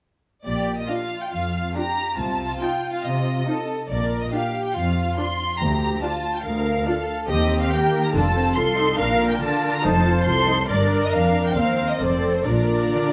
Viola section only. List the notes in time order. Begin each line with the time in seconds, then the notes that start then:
0.88 D4 F4
1.75 D4 F4
2.61 D#4 F4
3.46 D#4 F4
4.33 D4 F4
5.17 D4 F4
6.02 D4 F4
6.86 D4 F4
7.28 C4 G4
7.72 A#3 A#4
8.14 D4 A4
8.35 C4
8.56 F4 A4
8.77 D#4
8.99 D4 A#4
9.41 D4
9.84 D#4 C5
10.05 F4
10.25 F4
10.47 D#4
10.68 D4 A#4
11.55 C4 A#4
11.99 C4 A4
12.44 D4 F4